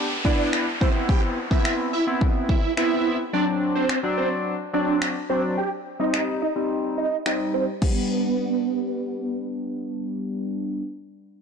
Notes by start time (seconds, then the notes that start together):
Already playing: downlifter
0.25 B3 D4 E4 D5, kick
0.53 finger snap
0.81 B3 C4 E4 C5, kick
1.09 G4 G5, kick
1.51 B3 C4 E4 E5, kick
1.65 finger snap
1.93 E4 E5
2.07 B3 C4 E4
2.21 kick
2.49 E4 E5, kick
2.77 B3 C4 E4 E5, finger snap
3.33 F#3 C4 D4 D5
3.75 C4 C5
3.89 finger snap
4.03 F#3 C4 D4
4.18 C4 C5
4.73 F#3 C4 D4 D5
5.02 finger snap
5.29 F#3 C4 D4 C5
5.58 G4 G5
6.00 G3 C4 D#4 D#5
6.14 finger snap
6.42 D#4 D#5
6.56 G3 C4 D#4
6.98 D#4 D#5
7.26 G3 C4 D#4 D#5, finger snap
7.54 C4 C5
7.82 G3 B3 D4, kick, crash